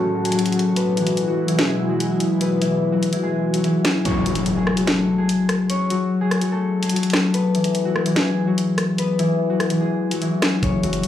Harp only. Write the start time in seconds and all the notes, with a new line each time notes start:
Already playing: F#3 G#3 A3 C#4 F#4 A4 C#5
0.25 G#3 G#4
0.35 F#3 F#4
0.56 A3 A4
0.76 B3 B4
0.97 E3 E4
1.28 F#3 F#4
1.48 E3 E4
1.59 G#3 G#4
1.89 F#3 F#4
2.41 B3 B4
2.61 E3 E4
2.92 F#3 F#4
3.13 E3 E4
3.23 G#3 G#4
3.54 F#3 F#4
3.64 E3 E4
3.84 G#3 G#4
4.05 C#4 C#5
4.26 F#3 F#4
4.57 G#3 G#4
4.77 F#3 F#4
4.87 A3 A4
5.18 G#3 G#4
5.70 C#4 C#5
5.90 F#3 F#4
6.21 G#3 G#4
6.41 F#3 F#4
6.52 A3 A4
6.83 G#3 G#4
6.93 F#3 F#4
7.13 A3 A4
7.34 B3 B4
7.54 E3 E4
7.85 F#3 F#4
8.06 E3 E4
8.16 G#3 G#4
8.47 F#3 F#4
8.98 B3 B4
9.19 E3 E4
9.50 F#3 F#4
9.70 E3 E4
9.81 G#3 G#4
10.11 F#3 F#4
10.22 E3 E4
10.42 G#3 G#4
10.63 C#4 C#5
10.83 F#3 F#4